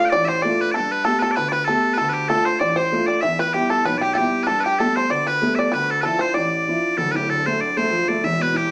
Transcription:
0.00 F5
0.05 G5
0.09 A1 D5
0.25 C5 E5
0.42 A3 D4 F4 D5
0.61 B4
0.72 A4 D5
0.76 G2
0.92 B4
1.05 A3 B3 G4 A4
1.19 A4 B4
1.31 D5
1.36 D2 B4
1.49 B4 D5
1.65 A3 A4
1.69 B3 G4
1.94 A4 B4
1.98 D2 A4
2.09 G4 B4
2.28 A3 D4 F4 A4
2.45 C5
2.60 A1 D5
2.76 C5
2.92 A3 D4 F4
3.06 D5
3.21 E2 E5
3.39 B4
3.53 G3 B3 E4 G4
3.70 A4
3.85 B1 B4
3.98 G4 D5
4.02 G4
4.13 G3 B3 G4 A4
4.17 E4 G4
4.43 A4 B4
4.48 G2
4.60 G4 B4
4.66 G4
4.78 G3 A3 B3 A4
4.96 C5
5.10 D2 D5
5.27 B4
5.42 G3 A3 B3
5.55 D5 E5
5.72 D2 B4
5.91 A4
6.01 F3 D4 E4 A4 B4
6.05 A4
6.19 C5
6.34 A1 D5
6.68 F3 D4 E4
6.98 D1 D2 A4
7.12 A2 B4
7.16 G4
7.28 D3 A4
7.46 A3 C5
7.60 D3 D5
7.77 A3 C5
7.90 F3
8.08 A3 D5
8.24 E1 E2 E5
8.39 B2 B4
8.54 E3 G4

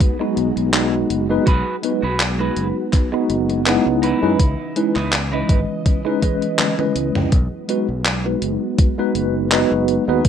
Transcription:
Already playing: F#3 G#3 B3 D#4 F#4 B4
0.00 muted clean electric guitar stroke, kick, closed hi-hat
0.19 G#3 B3 D#4 F#4, muted clean electric guitar stroke
0.36 B1, muted clean electric guitar stroke, closed hi-hat
0.56 B1, muted clean electric guitar stroke, closed hi-hat
0.73 G#3 B3 D#4 F#4, muted clean electric guitar stroke, clap, closed hi-hat
0.93 muted clean electric guitar stroke
1.10 F#1, closed hi-hat
1.29 G#3 B3 D#4 F#4 B4
1.46 B1 B3 F#4 G#4 B4, kick, closed hi-hat
1.83 G#3 B3 D#4 F#4 B4, closed hi-hat
2.02 B1 F#4 G#4 B4
2.20 clap, closed hi-hat
2.39 G#3 B3 D#4 F#4 G#4 B4
2.57 F#1, closed hi-hat
2.92 muted clean electric guitar stroke, kick, clap, closed hi-hat
3.12 G#3 B3 D#4 F#4, muted clean electric guitar stroke
3.29 F#1, muted clean electric guitar stroke, closed hi-hat
3.49 muted clean electric guitar stroke, closed hi-hat
3.65 G#3 B3 C#4 D#4 E4, muted clean electric guitar stroke, clap, closed hi-hat
3.85 C#2, muted clean electric guitar stroke
4.02 C#3 E3 D#4 E4 B4 D#5, closed hi-hat
4.22 F#2 G#3 C#4 D#4 E4 B4
4.39 C#2, kick, closed hi-hat
4.76 G#3 C#4 D#4 E4 B4, closed hi-hat
4.95 C#2 D#4 E4 B4, clap
5.13 clap, closed hi-hat
5.32 E3 G#3 C#4 D#4 E4 B4 D#5
5.49 G#1, kick, closed hi-hat
5.85 muted clean electric guitar stroke, kick, closed hi-hat
6.05 G#3 C#4 D#4 E4 B4, muted clean electric guitar stroke
6.22 E3 G#3 C#4 B4 D#5, muted clean electric guitar stroke, kick, closed hi-hat
6.41 muted clean electric guitar stroke, closed hi-hat
6.58 muted clean electric guitar stroke, clap, closed hi-hat, high tom
6.78 G#3 C#4 E4 B4 D#5, muted clean electric guitar stroke, high tom
6.96 C#2, closed hi-hat
7.15 C#2, mid tom
7.32 B1 F#3 G#3 B3 F#4, kick, closed hi-hat
7.68 G#3 B3 D#4 F#4 B4, closed hi-hat
7.89 B1
8.05 clap, closed hi-hat
8.25 G#3 B3 D#4 F#4 B4
8.42 F#1, closed hi-hat
8.79 kick, closed hi-hat
8.98 G#3 B3 D#4 F#4 B4
9.15 F#1, closed hi-hat
9.51 G#3 B3 D#4 F#4 B4, clap, closed hi-hat
9.72 F#1
9.88 closed hi-hat
10.08 D#2 G#3 B3 D#4 F#4 B4
10.25 B1, kick, closed hi-hat

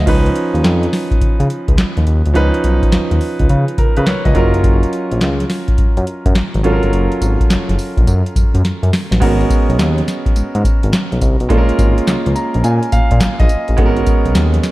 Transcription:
0.06 C#2 F3 C#4 D#4 B4, kick, closed hi-hat, crash
0.26 closed hi-hat
0.36 closed hi-hat
0.54 D#2, closed hi-hat
0.64 F2, snare, clap, closed hi-hat
0.83 closed hi-hat
0.93 snare, open hi-hat
1.11 kick, closed hi-hat
1.21 C#3, kick, closed hi-hat
1.40 C#3, closed hi-hat
1.50 closed hi-hat
1.68 C#2, kick, closed hi-hat
1.78 snare, clap, closed hi-hat
1.97 D#2, closed hi-hat
2.07 D#2, closed hi-hat
2.26 D2, closed hi-hat
2.34 C#2 F3 C#4 D#4 B4, closed hi-hat
2.54 closed hi-hat
2.64 B1, closed hi-hat
2.82 kick, closed hi-hat
2.92 D#2, snare, clap, closed hi-hat
3.11 D#2, closed hi-hat
3.21 open hi-hat
3.39 C#2, kick, closed hi-hat
3.49 C#3, closed hi-hat
3.68 closed hi-hat
3.78 C#3 A#4, kick, closed hi-hat
3.97 C#3 B4, closed hi-hat
4.06 C#2 C#5, snare, clap, closed hi-hat
4.25 C#2 D#5, kick, closed hi-hat
4.34 F#1 F#3 C#4 F4 A#4, kick, closed hi-hat
4.54 closed hi-hat
4.64 kick, closed hi-hat
4.83 closed hi-hat
4.93 closed hi-hat
5.12 A#1, closed hi-hat
5.21 C#2, snare, clap, closed hi-hat
5.40 closed hi-hat
5.50 snare, open hi-hat
5.68 kick, closed hi-hat
5.78 F#2, kick, closed hi-hat
5.97 F#2, closed hi-hat
6.07 closed hi-hat
6.26 F#2, kick, closed hi-hat
6.35 snare, clap, closed hi-hat
6.54 G#1, closed hi-hat
6.63 G#1 F#3 C#4 F4 A4, closed hi-hat
6.72 A#4
6.83 G1, closed hi-hat
6.93 F#1, closed hi-hat
7.12 closed hi-hat
7.21 G#1, closed hi-hat, tambourine
7.40 kick, closed hi-hat
7.50 F#1, snare, clap, closed hi-hat, tambourine
7.69 F#1, closed hi-hat
7.79 open hi-hat, tambourine
7.97 A#1, kick, closed hi-hat
8.07 F#2, closed hi-hat, tambourine
8.26 closed hi-hat
8.36 F#2, kick, closed hi-hat, tambourine
8.54 F#2, closed hi-hat
8.64 F#2, snare, closed hi-hat
8.83 F#2, closed hi-hat
8.93 snare, open hi-hat
9.11 A1, snare, closed hi-hat
9.20 G#1 G#3 B3 C#4 F#4 A#4, kick, closed hi-hat, crash
9.41 closed hi-hat
9.50 kick, closed hi-hat, tambourine
9.69 B1, closed hi-hat
9.79 D#2, snare, clap, closed hi-hat, tambourine
9.98 closed hi-hat
10.08 snare, closed hi-hat, tambourine
10.26 kick, closed hi-hat
10.36 G#2, closed hi-hat, tambourine
10.55 G#2, closed hi-hat
10.64 kick, closed hi-hat, tambourine
10.83 G#1, closed hi-hat
10.93 snare, clap, closed hi-hat, tambourine
11.12 B1, closed hi-hat
11.21 C2, kick, closed hi-hat, tambourine
11.40 B1, closed hi-hat
11.49 A#1 G#3 A#3 C#4 F4 A4, kick, closed hi-hat
11.58 A#4
11.69 closed hi-hat
11.79 G#1, kick, closed hi-hat, tambourine
11.98 closed hi-hat
12.07 C#2, snare, clap, closed hi-hat, tambourine
12.26 C#2, closed hi-hat
12.35 A#5, closed hi-hat, tambourine
12.54 A#1, closed hi-hat
12.64 A#2 G#5, closed hi-hat, tambourine
12.83 closed hi-hat
12.92 A#2 F5, kick, closed hi-hat, tambourine
13.11 A#2, kick, closed hi-hat
13.20 A#1 F5, snare, clap, closed hi-hat, tambourine
13.40 A#1 D#5, kick, closed hi-hat
13.49 closed hi-hat, tambourine
13.68 A1, closed hi-hat
13.77 G#1 G#3 B3 C#4 F#4 A4, kick, closed hi-hat
13.86 A#4
13.97 closed hi-hat
14.06 kick, closed hi-hat, tambourine
14.25 B1, closed hi-hat
14.35 D#2, snare, clap, closed hi-hat, tambourine
14.54 closed hi-hat
14.63 snare, closed hi-hat, tambourine

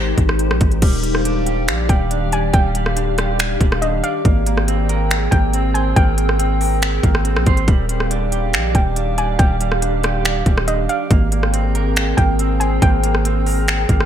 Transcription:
Already playing: G#1 G#3 D#4 G4 A#4 C5
0.18 G#1, kick, closed hi-hat
0.29 cross-stick
0.39 closed hi-hat
0.50 A#1, cross-stick
0.61 G#1, kick, closed hi-hat
0.71 closed hi-hat
0.82 D#1 D#3 G3 G4 D5 F5, kick, closed hi-hat, crash
1.03 G3, closed hi-hat
1.15 cross-stick
1.25 D4, closed hi-hat
1.46 G4, closed hi-hat
1.68 A#1, finger snap, closed hi-hat
1.89 D#1 G3 G5, kick, closed hi-hat
2.11 D4, closed hi-hat
2.32 D5 G#5, closed hi-hat
2.53 D#1 G3 G5, kick, closed hi-hat
2.75 G3, closed hi-hat
2.86 cross-stick
2.97 D4, closed hi-hat
3.18 G4, cross-stick, closed hi-hat
3.39 finger snap, closed hi-hat
3.61 D#1 G3, kick, closed hi-hat
3.72 cross-stick
3.82 D4 D#5, closed hi-hat
4.04 D5 F5, closed hi-hat
4.25 G#1 A#3 C4 G#4 A#4 G5, kick, closed hi-hat
4.46 A#3, closed hi-hat
4.57 cross-stick
4.68 C4, closed hi-hat
4.89 A#4, closed hi-hat
5.11 finger snap, closed hi-hat
5.31 G#1 A#3 G5, kick, closed hi-hat
5.54 C4, closed hi-hat
5.74 C5 G#5, closed hi-hat
5.96 G#1 A#3 G5, kick, closed hi-hat
6.18 A#3, closed hi-hat
6.29 cross-stick
6.39 C4, closed hi-hat
6.61 A#4, open hi-hat
6.82 finger snap, closed hi-hat
7.03 G#1 A#3, kick, closed hi-hat
7.15 cross-stick
7.25 C4, closed hi-hat
7.36 A#1, cross-stick
7.46 G#1 C5, kick, closed hi-hat
7.57 closed hi-hat
7.68 D#1 D#3 G3 G4 D5 F5, kick, closed hi-hat
7.89 G3, closed hi-hat
8.00 cross-stick
8.11 D4, closed hi-hat
8.32 G4, closed hi-hat
8.53 A#1, finger snap, closed hi-hat
8.75 D#1 G3 G5, kick, closed hi-hat
8.96 D4, closed hi-hat
9.18 D5 G#5, closed hi-hat
9.39 D#1 G3 G5, kick, closed hi-hat
9.60 G3, closed hi-hat
9.72 cross-stick
9.82 D4, closed hi-hat
10.04 G4, cross-stick, closed hi-hat
10.25 finger snap, closed hi-hat
10.46 D#1 G3, kick, closed hi-hat
10.58 cross-stick
10.68 D4 D#5, closed hi-hat
10.89 D5 F5, closed hi-hat
11.11 G#1 A#3 C4 G#4 A#4 G5, kick, closed hi-hat
11.32 A#3, closed hi-hat
11.43 cross-stick
11.54 C4, closed hi-hat
11.75 A#4, closed hi-hat
11.96 finger snap, closed hi-hat
12.17 G#1 A#3 G5, kick, closed hi-hat
12.39 C4, closed hi-hat
12.60 C5 G#5, closed hi-hat
12.82 G#1 A#3 G5, kick, closed hi-hat
13.04 A#3, closed hi-hat
13.15 cross-stick
13.25 C4, closed hi-hat
13.46 A#4, open hi-hat
13.68 finger snap, closed hi-hat
13.89 G#1 A#3, kick, closed hi-hat
14.00 cross-stick

